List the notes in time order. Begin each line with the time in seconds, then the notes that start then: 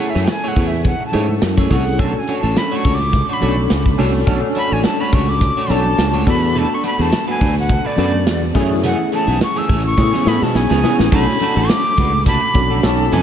Already playing: C#4 E4 G#4 A4 F#5
0.00 A3 E4 G#4 C#5
0.10 E5
0.15 F#2 A3 E4 G#4 C#5, snare
0.24 G5, muted clean electric guitar stroke, snare, closed hi-hat, muted conga, high conga
0.30 G#5
0.44 A3 E4 G#4 C#5
0.48 F#5
0.56 E2 A3 E4 G#4 C#5, kick, open hi-hat
0.67 E5
0.72 muted clean electric guitar stroke
0.85 F#5, kick, closed hi-hat, low conga
1.00 muted clean electric guitar stroke
1.06 A5
1.12 G#2 A3 C#4 E4 G#4 A4 C#5, closed hi-hat, muted conga, high conga
1.28 muted clean electric guitar stroke, high conga
1.42 F#2, muted clean electric guitar stroke, snare, closed hi-hat
1.57 A3 E4 G#4 C#5, kick, high conga
1.70 C2 A3 C#4 E4 G#4 A4 C#5 F#5, kick, snare, open hi-hat, muted conga, low conga
1.86 muted clean electric guitar stroke
1.98 B1 A3 C#4 D4 F#4 A4 C#5 A5, kick, closed hi-hat, low conga
2.15 muted clean electric guitar stroke
2.19 G#5
2.28 A3 D4 F#4 C#5, closed hi-hat, muted conga
2.39 A5
2.43 A1 A3 D4 F#4 C#5
2.56 B5, muted clean electric guitar stroke, snare, closed hi-hat, muted conga, high conga
2.71 A3 D4 F#4 C#5
2.76 C#6
2.83 C#2 A3 D4 F#4 C#5, kick, open hi-hat, muted conga
2.94 D6
3.00 muted clean electric guitar stroke
3.13 muted clean electric guitar stroke, kick, closed hi-hat, muted conga, low conga
3.29 A3 D4 F#4 C#5
3.33 B5
3.40 B1 A3 C#4 D4 F#4 A4 C#5, closed hi-hat, muted conga, high conga
3.57 muted clean electric guitar stroke, high conga
3.69 C#2, snare, closed hi-hat, muted conga
3.85 muted clean electric guitar stroke, kick, high conga
3.98 C2 A3 C#4 D4 F#4 A4 C#5, open hi-hat, muted conga, low conga
4.14 muted clean electric guitar stroke
4.26 B1 A3 C#4 D4 F#4 A4 C#5, kick, closed hi-hat, muted conga, low conga
4.42 muted clean electric guitar stroke
4.55 A3 D4 F#4 C#5 B5, closed hi-hat, muted conga
4.71 A1 A3 D4 F#4 C#5 G#5
4.83 A5, muted clean electric guitar stroke, snare, closed hi-hat, muted conga, high conga
5.00 A3 D4 F#4 C#5 B5
5.11 C#2 A3 D4 F#4 C#5 C#6, kick, open hi-hat, muted conga
5.29 D6, muted clean electric guitar stroke
5.41 muted clean electric guitar stroke, kick, closed hi-hat, muted conga, low conga
5.57 A3 D4 F#4 C#5
5.68 B1 A3 C#4 D4 F#4 A4 C#5, closed hi-hat, high conga
5.72 A5
5.85 muted clean electric guitar stroke, high conga
5.97 C#2, muted clean electric guitar stroke, snare, closed hi-hat, muted conga
6.13 A3 D4 F#4 C#5, high conga
6.26 E2 A3 B3 D4 F#4 A4 B4 B5, kick, snare, open hi-hat, low conga
6.42 muted clean electric guitar stroke
6.55 A3 D4 F#4 B4, closed hi-hat, muted conga, low conga
6.59 A5
6.70 muted clean electric guitar stroke
6.74 C#6
6.83 A3 D4 F#4 B4 B5, closed hi-hat, muted conga
6.98 E2 A3 D4 F#4 B4 A5, snare
7.12 muted clean electric guitar stroke, snare, closed hi-hat, muted conga, high conga
7.28 A3 D4 F#4 B4 G#5
7.40 D2 A3 D4 F#4 B4, kick, open hi-hat
7.56 F#5, muted clean electric guitar stroke
7.69 muted clean electric guitar stroke, kick, closed hi-hat, muted conga, low conga
7.85 A3 D4 F#4 B4 D5
7.96 F#2 A3 B3 D4 F#4 A4 B4, closed hi-hat, muted conga, high conga
8.13 muted clean electric guitar stroke, high conga
8.26 E2, snare, closed hi-hat
8.42 muted clean electric guitar stroke, high conga
8.55 F#2 E3 A3 C#4 E4 G#4, kick, snare, open hi-hat, muted conga, low conga
8.70 muted clean electric guitar stroke
8.83 E3 A3 C#4 G#4 F#5, closed hi-hat, low conga
8.99 muted clean electric guitar stroke
9.12 E3 A3 C#4 G#4 A5, closed hi-hat, muted conga
9.27 B1 E3 A3 C#4 G#4, snare
9.41 C#6, muted clean electric guitar stroke, snare, closed hi-hat, muted conga, high conga
9.56 E3 A3 C#4 G#4 E6
9.67 A1 E3 A3 C#4 G#4, kick, open hi-hat, muted conga
9.84 C#6, muted clean electric guitar stroke
9.97 A2 B3 C#4 E4 G#4, muted clean electric guitar stroke, kick, snare, low conga
10.13 E3 B3 C#4 G#4, snare
10.25 A2 E3 B3 C#4 E4 G#4 B5, snare, high conga
10.41 B2 A5, muted clean electric guitar stroke, snare, high conga
10.54 B1 G#5, muted clean electric guitar stroke, snare, muted conga
10.70 C#2 E3 B3 C#4 G#4, snare, high conga
10.83 E3 B3 C#4 E4 G#4, snare, muted conga, low conga
10.98 A1, muted clean electric guitar stroke, snare
11.11 B1 A3 C#4 D4 F#4 A4 B5, kick, crash, low conga
11.27 muted clean electric guitar stroke
11.40 A3 D4 F#4 A4, closed hi-hat, high conga
11.56 A1 A3 D4 F#4 A4
11.69 D6, muted clean electric guitar stroke, snare, closed hi-hat, high conga
11.85 muted clean electric guitar stroke
11.96 C#2 A3 D4 F#4 B4, kick, closed hi-hat, muted conga
12.13 muted clean electric guitar stroke
12.26 A3 D4 F#4 A4 B5, kick, closed hi-hat, low conga
12.42 muted clean electric guitar stroke
12.54 B1 C#4 D4 F#4 A4, muted clean electric guitar stroke, kick, closed hi-hat, muted conga, high conga
12.70 A3 D4 F#4 A4, high conga
12.83 B1 C#4 D#4 F#4 A4 A5, snare, closed hi-hat, muted conga
12.99 muted clean electric guitar stroke, high conga
13.12 F2 F#3 B3 D#4 A4 G#5, closed hi-hat, muted conga, low conga